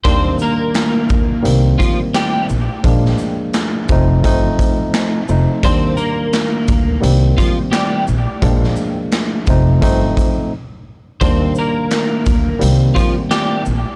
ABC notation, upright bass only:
X:1
M:4/4
L:1/16
Q:"Swing 16ths" 1/4=86
K:Eb
V:1 name="Upright bass" clef=bass
E,,2 z4 D,,2 C,,2 z4 B,,, z | B,,,2 z4 F,,,2 G,,,2 z4 F,,, z | E,,2 z4 D,,2 C,,2 z4 B,,, z | B,,,2 z4 F,,,2 G,,,2 z6 |
E,,2 z4 D,,2 C,,2 z4 B,,, z |]